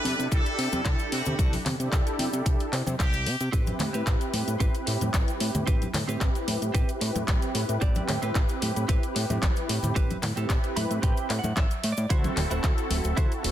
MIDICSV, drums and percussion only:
0, 0, Header, 1, 2, 480
1, 0, Start_track
1, 0, Tempo, 535714
1, 1245, Time_signature, 4, 2, 24, 8
1, 12109, End_track
2, 0, Start_track
2, 0, Title_t, "Drums"
2, 47, Note_on_c, 9, 46, 95
2, 51, Note_on_c, 9, 63, 56
2, 137, Note_off_c, 9, 46, 0
2, 141, Note_off_c, 9, 63, 0
2, 176, Note_on_c, 9, 42, 39
2, 178, Note_on_c, 9, 69, 76
2, 265, Note_off_c, 9, 42, 0
2, 267, Note_off_c, 9, 69, 0
2, 283, Note_on_c, 9, 69, 64
2, 284, Note_on_c, 9, 36, 107
2, 287, Note_on_c, 9, 42, 89
2, 373, Note_off_c, 9, 69, 0
2, 374, Note_off_c, 9, 36, 0
2, 377, Note_off_c, 9, 42, 0
2, 410, Note_on_c, 9, 69, 37
2, 414, Note_on_c, 9, 42, 39
2, 500, Note_off_c, 9, 69, 0
2, 504, Note_off_c, 9, 42, 0
2, 526, Note_on_c, 9, 46, 92
2, 615, Note_off_c, 9, 46, 0
2, 648, Note_on_c, 9, 69, 85
2, 652, Note_on_c, 9, 63, 88
2, 654, Note_on_c, 9, 42, 38
2, 738, Note_off_c, 9, 69, 0
2, 741, Note_off_c, 9, 63, 0
2, 743, Note_off_c, 9, 42, 0
2, 763, Note_on_c, 9, 69, 62
2, 764, Note_on_c, 9, 36, 115
2, 766, Note_on_c, 9, 39, 106
2, 766, Note_on_c, 9, 42, 91
2, 852, Note_off_c, 9, 69, 0
2, 854, Note_off_c, 9, 36, 0
2, 856, Note_off_c, 9, 39, 0
2, 856, Note_off_c, 9, 42, 0
2, 886, Note_on_c, 9, 69, 36
2, 894, Note_on_c, 9, 42, 39
2, 976, Note_off_c, 9, 69, 0
2, 983, Note_off_c, 9, 42, 0
2, 1005, Note_on_c, 9, 46, 99
2, 1094, Note_off_c, 9, 46, 0
2, 1123, Note_on_c, 9, 69, 86
2, 1133, Note_on_c, 9, 42, 39
2, 1137, Note_on_c, 9, 64, 82
2, 1213, Note_off_c, 9, 69, 0
2, 1223, Note_off_c, 9, 42, 0
2, 1226, Note_off_c, 9, 64, 0
2, 1244, Note_on_c, 9, 36, 115
2, 1246, Note_on_c, 9, 42, 93
2, 1246, Note_on_c, 9, 69, 68
2, 1333, Note_off_c, 9, 36, 0
2, 1335, Note_off_c, 9, 42, 0
2, 1336, Note_off_c, 9, 69, 0
2, 1371, Note_on_c, 9, 46, 55
2, 1376, Note_on_c, 9, 69, 42
2, 1377, Note_on_c, 9, 63, 86
2, 1461, Note_off_c, 9, 46, 0
2, 1466, Note_off_c, 9, 63, 0
2, 1466, Note_off_c, 9, 69, 0
2, 1485, Note_on_c, 9, 64, 85
2, 1486, Note_on_c, 9, 39, 60
2, 1486, Note_on_c, 9, 46, 98
2, 1575, Note_off_c, 9, 64, 0
2, 1576, Note_off_c, 9, 39, 0
2, 1576, Note_off_c, 9, 46, 0
2, 1612, Note_on_c, 9, 42, 38
2, 1616, Note_on_c, 9, 69, 75
2, 1702, Note_off_c, 9, 42, 0
2, 1705, Note_off_c, 9, 69, 0
2, 1723, Note_on_c, 9, 36, 110
2, 1725, Note_on_c, 9, 39, 117
2, 1725, Note_on_c, 9, 42, 97
2, 1732, Note_on_c, 9, 69, 60
2, 1813, Note_off_c, 9, 36, 0
2, 1814, Note_off_c, 9, 39, 0
2, 1814, Note_off_c, 9, 42, 0
2, 1821, Note_off_c, 9, 69, 0
2, 1853, Note_on_c, 9, 42, 38
2, 1855, Note_on_c, 9, 69, 40
2, 1942, Note_off_c, 9, 42, 0
2, 1945, Note_off_c, 9, 69, 0
2, 1964, Note_on_c, 9, 46, 98
2, 1964, Note_on_c, 9, 63, 56
2, 2053, Note_off_c, 9, 63, 0
2, 2054, Note_off_c, 9, 46, 0
2, 2088, Note_on_c, 9, 69, 76
2, 2092, Note_on_c, 9, 42, 39
2, 2178, Note_off_c, 9, 69, 0
2, 2182, Note_off_c, 9, 42, 0
2, 2203, Note_on_c, 9, 36, 110
2, 2204, Note_on_c, 9, 69, 63
2, 2205, Note_on_c, 9, 42, 91
2, 2293, Note_off_c, 9, 36, 0
2, 2294, Note_off_c, 9, 69, 0
2, 2295, Note_off_c, 9, 42, 0
2, 2327, Note_on_c, 9, 69, 37
2, 2333, Note_on_c, 9, 42, 39
2, 2417, Note_off_c, 9, 69, 0
2, 2423, Note_off_c, 9, 42, 0
2, 2444, Note_on_c, 9, 39, 58
2, 2445, Note_on_c, 9, 46, 93
2, 2534, Note_off_c, 9, 39, 0
2, 2534, Note_off_c, 9, 46, 0
2, 2567, Note_on_c, 9, 63, 85
2, 2574, Note_on_c, 9, 42, 42
2, 2574, Note_on_c, 9, 69, 77
2, 2657, Note_off_c, 9, 63, 0
2, 2664, Note_off_c, 9, 42, 0
2, 2664, Note_off_c, 9, 69, 0
2, 2684, Note_on_c, 9, 36, 110
2, 2687, Note_on_c, 9, 39, 113
2, 2687, Note_on_c, 9, 42, 90
2, 2689, Note_on_c, 9, 69, 71
2, 2773, Note_off_c, 9, 36, 0
2, 2776, Note_off_c, 9, 39, 0
2, 2777, Note_off_c, 9, 42, 0
2, 2779, Note_off_c, 9, 69, 0
2, 2804, Note_on_c, 9, 69, 43
2, 2813, Note_on_c, 9, 42, 40
2, 2894, Note_off_c, 9, 69, 0
2, 2902, Note_off_c, 9, 42, 0
2, 2925, Note_on_c, 9, 46, 98
2, 3014, Note_off_c, 9, 46, 0
2, 3049, Note_on_c, 9, 69, 82
2, 3052, Note_on_c, 9, 42, 42
2, 3139, Note_off_c, 9, 69, 0
2, 3141, Note_off_c, 9, 42, 0
2, 3164, Note_on_c, 9, 36, 118
2, 3164, Note_on_c, 9, 42, 89
2, 3166, Note_on_c, 9, 69, 77
2, 3254, Note_off_c, 9, 36, 0
2, 3254, Note_off_c, 9, 42, 0
2, 3256, Note_off_c, 9, 69, 0
2, 3286, Note_on_c, 9, 69, 43
2, 3291, Note_on_c, 9, 42, 39
2, 3291, Note_on_c, 9, 63, 91
2, 3376, Note_off_c, 9, 69, 0
2, 3380, Note_off_c, 9, 63, 0
2, 3381, Note_off_c, 9, 42, 0
2, 3398, Note_on_c, 9, 64, 97
2, 3404, Note_on_c, 9, 39, 62
2, 3405, Note_on_c, 9, 46, 103
2, 3488, Note_off_c, 9, 64, 0
2, 3494, Note_off_c, 9, 39, 0
2, 3494, Note_off_c, 9, 46, 0
2, 3532, Note_on_c, 9, 42, 39
2, 3532, Note_on_c, 9, 69, 87
2, 3621, Note_off_c, 9, 42, 0
2, 3622, Note_off_c, 9, 69, 0
2, 3644, Note_on_c, 9, 36, 118
2, 3645, Note_on_c, 9, 39, 121
2, 3645, Note_on_c, 9, 42, 93
2, 3647, Note_on_c, 9, 69, 68
2, 3734, Note_off_c, 9, 36, 0
2, 3734, Note_off_c, 9, 39, 0
2, 3735, Note_off_c, 9, 42, 0
2, 3737, Note_off_c, 9, 69, 0
2, 3772, Note_on_c, 9, 42, 40
2, 3774, Note_on_c, 9, 69, 38
2, 3861, Note_off_c, 9, 42, 0
2, 3864, Note_off_c, 9, 69, 0
2, 3885, Note_on_c, 9, 46, 100
2, 3885, Note_on_c, 9, 63, 60
2, 3974, Note_off_c, 9, 46, 0
2, 3975, Note_off_c, 9, 63, 0
2, 4012, Note_on_c, 9, 42, 42
2, 4014, Note_on_c, 9, 69, 81
2, 4101, Note_off_c, 9, 42, 0
2, 4104, Note_off_c, 9, 69, 0
2, 4124, Note_on_c, 9, 36, 116
2, 4125, Note_on_c, 9, 42, 90
2, 4133, Note_on_c, 9, 69, 62
2, 4214, Note_off_c, 9, 36, 0
2, 4215, Note_off_c, 9, 42, 0
2, 4222, Note_off_c, 9, 69, 0
2, 4252, Note_on_c, 9, 42, 38
2, 4252, Note_on_c, 9, 69, 40
2, 4342, Note_off_c, 9, 42, 0
2, 4342, Note_off_c, 9, 69, 0
2, 4364, Note_on_c, 9, 46, 99
2, 4453, Note_off_c, 9, 46, 0
2, 4491, Note_on_c, 9, 42, 41
2, 4496, Note_on_c, 9, 69, 85
2, 4499, Note_on_c, 9, 63, 82
2, 4581, Note_off_c, 9, 42, 0
2, 4586, Note_off_c, 9, 69, 0
2, 4589, Note_off_c, 9, 63, 0
2, 4603, Note_on_c, 9, 39, 113
2, 4603, Note_on_c, 9, 42, 91
2, 4604, Note_on_c, 9, 36, 120
2, 4607, Note_on_c, 9, 69, 67
2, 4693, Note_off_c, 9, 39, 0
2, 4693, Note_off_c, 9, 42, 0
2, 4694, Note_off_c, 9, 36, 0
2, 4696, Note_off_c, 9, 69, 0
2, 4731, Note_on_c, 9, 42, 40
2, 4743, Note_on_c, 9, 69, 42
2, 4821, Note_off_c, 9, 42, 0
2, 4832, Note_off_c, 9, 69, 0
2, 4842, Note_on_c, 9, 46, 104
2, 4932, Note_off_c, 9, 46, 0
2, 4970, Note_on_c, 9, 64, 96
2, 4972, Note_on_c, 9, 42, 41
2, 4972, Note_on_c, 9, 69, 74
2, 5060, Note_off_c, 9, 64, 0
2, 5061, Note_off_c, 9, 42, 0
2, 5062, Note_off_c, 9, 69, 0
2, 5084, Note_on_c, 9, 36, 121
2, 5084, Note_on_c, 9, 42, 91
2, 5087, Note_on_c, 9, 69, 70
2, 5174, Note_off_c, 9, 36, 0
2, 5174, Note_off_c, 9, 42, 0
2, 5176, Note_off_c, 9, 69, 0
2, 5213, Note_on_c, 9, 42, 38
2, 5219, Note_on_c, 9, 69, 36
2, 5222, Note_on_c, 9, 63, 94
2, 5303, Note_off_c, 9, 42, 0
2, 5309, Note_off_c, 9, 69, 0
2, 5311, Note_off_c, 9, 63, 0
2, 5321, Note_on_c, 9, 64, 103
2, 5326, Note_on_c, 9, 39, 62
2, 5326, Note_on_c, 9, 46, 105
2, 5411, Note_off_c, 9, 64, 0
2, 5415, Note_off_c, 9, 39, 0
2, 5415, Note_off_c, 9, 46, 0
2, 5454, Note_on_c, 9, 42, 37
2, 5459, Note_on_c, 9, 69, 80
2, 5543, Note_off_c, 9, 42, 0
2, 5549, Note_off_c, 9, 69, 0
2, 5564, Note_on_c, 9, 36, 120
2, 5566, Note_on_c, 9, 39, 118
2, 5566, Note_on_c, 9, 42, 90
2, 5566, Note_on_c, 9, 69, 63
2, 5654, Note_off_c, 9, 36, 0
2, 5655, Note_off_c, 9, 39, 0
2, 5655, Note_off_c, 9, 42, 0
2, 5656, Note_off_c, 9, 69, 0
2, 5693, Note_on_c, 9, 42, 39
2, 5696, Note_on_c, 9, 69, 41
2, 5782, Note_off_c, 9, 42, 0
2, 5786, Note_off_c, 9, 69, 0
2, 5805, Note_on_c, 9, 46, 103
2, 5810, Note_on_c, 9, 63, 64
2, 5894, Note_off_c, 9, 46, 0
2, 5899, Note_off_c, 9, 63, 0
2, 5932, Note_on_c, 9, 42, 41
2, 5935, Note_on_c, 9, 69, 71
2, 6022, Note_off_c, 9, 42, 0
2, 6024, Note_off_c, 9, 69, 0
2, 6044, Note_on_c, 9, 36, 115
2, 6044, Note_on_c, 9, 42, 93
2, 6055, Note_on_c, 9, 69, 62
2, 6133, Note_off_c, 9, 42, 0
2, 6134, Note_off_c, 9, 36, 0
2, 6145, Note_off_c, 9, 69, 0
2, 6172, Note_on_c, 9, 42, 39
2, 6172, Note_on_c, 9, 69, 42
2, 6261, Note_off_c, 9, 69, 0
2, 6262, Note_off_c, 9, 42, 0
2, 6283, Note_on_c, 9, 46, 106
2, 6373, Note_off_c, 9, 46, 0
2, 6410, Note_on_c, 9, 63, 102
2, 6412, Note_on_c, 9, 42, 38
2, 6413, Note_on_c, 9, 69, 82
2, 6499, Note_off_c, 9, 63, 0
2, 6502, Note_off_c, 9, 42, 0
2, 6503, Note_off_c, 9, 69, 0
2, 6522, Note_on_c, 9, 69, 61
2, 6523, Note_on_c, 9, 39, 121
2, 6523, Note_on_c, 9, 42, 88
2, 6524, Note_on_c, 9, 36, 123
2, 6612, Note_off_c, 9, 39, 0
2, 6612, Note_off_c, 9, 69, 0
2, 6613, Note_off_c, 9, 42, 0
2, 6614, Note_off_c, 9, 36, 0
2, 6651, Note_on_c, 9, 42, 40
2, 6651, Note_on_c, 9, 69, 38
2, 6741, Note_off_c, 9, 42, 0
2, 6741, Note_off_c, 9, 69, 0
2, 6763, Note_on_c, 9, 46, 109
2, 6853, Note_off_c, 9, 46, 0
2, 6890, Note_on_c, 9, 42, 40
2, 6893, Note_on_c, 9, 69, 79
2, 6980, Note_off_c, 9, 42, 0
2, 6983, Note_off_c, 9, 69, 0
2, 7002, Note_on_c, 9, 69, 57
2, 7003, Note_on_c, 9, 42, 87
2, 7005, Note_on_c, 9, 36, 124
2, 7091, Note_off_c, 9, 69, 0
2, 7093, Note_off_c, 9, 42, 0
2, 7094, Note_off_c, 9, 36, 0
2, 7123, Note_on_c, 9, 69, 40
2, 7131, Note_on_c, 9, 42, 37
2, 7132, Note_on_c, 9, 63, 95
2, 7212, Note_off_c, 9, 69, 0
2, 7221, Note_off_c, 9, 42, 0
2, 7222, Note_off_c, 9, 63, 0
2, 7244, Note_on_c, 9, 39, 60
2, 7244, Note_on_c, 9, 46, 106
2, 7246, Note_on_c, 9, 64, 89
2, 7333, Note_off_c, 9, 39, 0
2, 7334, Note_off_c, 9, 46, 0
2, 7335, Note_off_c, 9, 64, 0
2, 7366, Note_on_c, 9, 69, 72
2, 7371, Note_on_c, 9, 42, 36
2, 7456, Note_off_c, 9, 69, 0
2, 7460, Note_off_c, 9, 42, 0
2, 7483, Note_on_c, 9, 69, 68
2, 7484, Note_on_c, 9, 36, 124
2, 7484, Note_on_c, 9, 39, 117
2, 7484, Note_on_c, 9, 42, 87
2, 7573, Note_off_c, 9, 39, 0
2, 7573, Note_off_c, 9, 69, 0
2, 7574, Note_off_c, 9, 36, 0
2, 7574, Note_off_c, 9, 42, 0
2, 7604, Note_on_c, 9, 69, 39
2, 7611, Note_on_c, 9, 42, 36
2, 7693, Note_off_c, 9, 69, 0
2, 7701, Note_off_c, 9, 42, 0
2, 7723, Note_on_c, 9, 63, 71
2, 7724, Note_on_c, 9, 46, 104
2, 7813, Note_off_c, 9, 63, 0
2, 7814, Note_off_c, 9, 46, 0
2, 7852, Note_on_c, 9, 42, 38
2, 7854, Note_on_c, 9, 69, 71
2, 7942, Note_off_c, 9, 42, 0
2, 7944, Note_off_c, 9, 69, 0
2, 7963, Note_on_c, 9, 69, 61
2, 7964, Note_on_c, 9, 36, 118
2, 7965, Note_on_c, 9, 42, 88
2, 8052, Note_off_c, 9, 69, 0
2, 8054, Note_off_c, 9, 36, 0
2, 8055, Note_off_c, 9, 42, 0
2, 8093, Note_on_c, 9, 42, 37
2, 8094, Note_on_c, 9, 69, 38
2, 8183, Note_off_c, 9, 42, 0
2, 8184, Note_off_c, 9, 69, 0
2, 8206, Note_on_c, 9, 46, 107
2, 8296, Note_off_c, 9, 46, 0
2, 8334, Note_on_c, 9, 42, 39
2, 8335, Note_on_c, 9, 69, 75
2, 8337, Note_on_c, 9, 63, 90
2, 8424, Note_off_c, 9, 42, 0
2, 8425, Note_off_c, 9, 69, 0
2, 8427, Note_off_c, 9, 63, 0
2, 8444, Note_on_c, 9, 36, 119
2, 8446, Note_on_c, 9, 39, 115
2, 8446, Note_on_c, 9, 42, 86
2, 8448, Note_on_c, 9, 69, 59
2, 8534, Note_off_c, 9, 36, 0
2, 8535, Note_off_c, 9, 39, 0
2, 8536, Note_off_c, 9, 42, 0
2, 8537, Note_off_c, 9, 69, 0
2, 8567, Note_on_c, 9, 69, 37
2, 8574, Note_on_c, 9, 42, 39
2, 8657, Note_off_c, 9, 69, 0
2, 8663, Note_off_c, 9, 42, 0
2, 8686, Note_on_c, 9, 46, 110
2, 8775, Note_off_c, 9, 46, 0
2, 8806, Note_on_c, 9, 64, 93
2, 8814, Note_on_c, 9, 42, 38
2, 8815, Note_on_c, 9, 69, 74
2, 8895, Note_off_c, 9, 64, 0
2, 8903, Note_off_c, 9, 42, 0
2, 8905, Note_off_c, 9, 69, 0
2, 8924, Note_on_c, 9, 36, 118
2, 8926, Note_on_c, 9, 69, 63
2, 8927, Note_on_c, 9, 42, 85
2, 9014, Note_off_c, 9, 36, 0
2, 9016, Note_off_c, 9, 42, 0
2, 9016, Note_off_c, 9, 69, 0
2, 9052, Note_on_c, 9, 69, 36
2, 9054, Note_on_c, 9, 42, 36
2, 9056, Note_on_c, 9, 63, 96
2, 9142, Note_off_c, 9, 69, 0
2, 9144, Note_off_c, 9, 42, 0
2, 9146, Note_off_c, 9, 63, 0
2, 9161, Note_on_c, 9, 64, 88
2, 9166, Note_on_c, 9, 39, 56
2, 9167, Note_on_c, 9, 46, 105
2, 9250, Note_off_c, 9, 64, 0
2, 9256, Note_off_c, 9, 39, 0
2, 9256, Note_off_c, 9, 46, 0
2, 9290, Note_on_c, 9, 69, 77
2, 9293, Note_on_c, 9, 42, 36
2, 9379, Note_off_c, 9, 69, 0
2, 9382, Note_off_c, 9, 42, 0
2, 9404, Note_on_c, 9, 36, 120
2, 9405, Note_on_c, 9, 39, 116
2, 9406, Note_on_c, 9, 42, 89
2, 9407, Note_on_c, 9, 69, 66
2, 9493, Note_off_c, 9, 36, 0
2, 9495, Note_off_c, 9, 39, 0
2, 9495, Note_off_c, 9, 42, 0
2, 9497, Note_off_c, 9, 69, 0
2, 9531, Note_on_c, 9, 69, 34
2, 9532, Note_on_c, 9, 42, 36
2, 9621, Note_off_c, 9, 69, 0
2, 9622, Note_off_c, 9, 42, 0
2, 9645, Note_on_c, 9, 63, 73
2, 9646, Note_on_c, 9, 46, 104
2, 9735, Note_off_c, 9, 63, 0
2, 9736, Note_off_c, 9, 46, 0
2, 9772, Note_on_c, 9, 42, 37
2, 9777, Note_on_c, 9, 69, 74
2, 9862, Note_off_c, 9, 42, 0
2, 9866, Note_off_c, 9, 69, 0
2, 9883, Note_on_c, 9, 36, 120
2, 9883, Note_on_c, 9, 42, 86
2, 9884, Note_on_c, 9, 69, 59
2, 9973, Note_off_c, 9, 36, 0
2, 9973, Note_off_c, 9, 42, 0
2, 9974, Note_off_c, 9, 69, 0
2, 10009, Note_on_c, 9, 69, 39
2, 10012, Note_on_c, 9, 42, 35
2, 10098, Note_off_c, 9, 69, 0
2, 10102, Note_off_c, 9, 42, 0
2, 10124, Note_on_c, 9, 39, 58
2, 10125, Note_on_c, 9, 46, 106
2, 10214, Note_off_c, 9, 39, 0
2, 10214, Note_off_c, 9, 46, 0
2, 10247, Note_on_c, 9, 63, 84
2, 10248, Note_on_c, 9, 69, 78
2, 10252, Note_on_c, 9, 42, 37
2, 10336, Note_off_c, 9, 63, 0
2, 10338, Note_off_c, 9, 69, 0
2, 10342, Note_off_c, 9, 42, 0
2, 10362, Note_on_c, 9, 69, 56
2, 10363, Note_on_c, 9, 36, 126
2, 10364, Note_on_c, 9, 39, 110
2, 10364, Note_on_c, 9, 42, 85
2, 10452, Note_off_c, 9, 69, 0
2, 10453, Note_off_c, 9, 36, 0
2, 10453, Note_off_c, 9, 39, 0
2, 10454, Note_off_c, 9, 42, 0
2, 10490, Note_on_c, 9, 69, 37
2, 10492, Note_on_c, 9, 42, 36
2, 10579, Note_off_c, 9, 69, 0
2, 10582, Note_off_c, 9, 42, 0
2, 10604, Note_on_c, 9, 46, 111
2, 10694, Note_off_c, 9, 46, 0
2, 10725, Note_on_c, 9, 69, 80
2, 10731, Note_on_c, 9, 42, 37
2, 10815, Note_off_c, 9, 69, 0
2, 10821, Note_off_c, 9, 42, 0
2, 10843, Note_on_c, 9, 36, 116
2, 10844, Note_on_c, 9, 42, 90
2, 10845, Note_on_c, 9, 69, 63
2, 10933, Note_off_c, 9, 36, 0
2, 10933, Note_off_c, 9, 42, 0
2, 10934, Note_off_c, 9, 69, 0
2, 10970, Note_on_c, 9, 42, 35
2, 10970, Note_on_c, 9, 63, 97
2, 10975, Note_on_c, 9, 69, 40
2, 11060, Note_off_c, 9, 42, 0
2, 11060, Note_off_c, 9, 63, 0
2, 11065, Note_off_c, 9, 69, 0
2, 11083, Note_on_c, 9, 39, 57
2, 11083, Note_on_c, 9, 46, 100
2, 11084, Note_on_c, 9, 64, 93
2, 11172, Note_off_c, 9, 39, 0
2, 11173, Note_off_c, 9, 46, 0
2, 11173, Note_off_c, 9, 64, 0
2, 11208, Note_on_c, 9, 69, 79
2, 11211, Note_on_c, 9, 42, 37
2, 11297, Note_off_c, 9, 69, 0
2, 11300, Note_off_c, 9, 42, 0
2, 11322, Note_on_c, 9, 36, 119
2, 11323, Note_on_c, 9, 39, 116
2, 11323, Note_on_c, 9, 42, 88
2, 11323, Note_on_c, 9, 69, 59
2, 11412, Note_off_c, 9, 36, 0
2, 11412, Note_off_c, 9, 39, 0
2, 11412, Note_off_c, 9, 69, 0
2, 11413, Note_off_c, 9, 42, 0
2, 11450, Note_on_c, 9, 69, 39
2, 11451, Note_on_c, 9, 42, 36
2, 11540, Note_off_c, 9, 42, 0
2, 11540, Note_off_c, 9, 69, 0
2, 11561, Note_on_c, 9, 63, 67
2, 11564, Note_on_c, 9, 46, 102
2, 11651, Note_off_c, 9, 63, 0
2, 11653, Note_off_c, 9, 46, 0
2, 11686, Note_on_c, 9, 69, 73
2, 11692, Note_on_c, 9, 42, 39
2, 11776, Note_off_c, 9, 69, 0
2, 11781, Note_off_c, 9, 42, 0
2, 11802, Note_on_c, 9, 36, 117
2, 11804, Note_on_c, 9, 69, 60
2, 11805, Note_on_c, 9, 42, 84
2, 11892, Note_off_c, 9, 36, 0
2, 11893, Note_off_c, 9, 69, 0
2, 11895, Note_off_c, 9, 42, 0
2, 11933, Note_on_c, 9, 42, 35
2, 11935, Note_on_c, 9, 69, 34
2, 12022, Note_off_c, 9, 42, 0
2, 12025, Note_off_c, 9, 69, 0
2, 12046, Note_on_c, 9, 46, 107
2, 12109, Note_off_c, 9, 46, 0
2, 12109, End_track
0, 0, End_of_file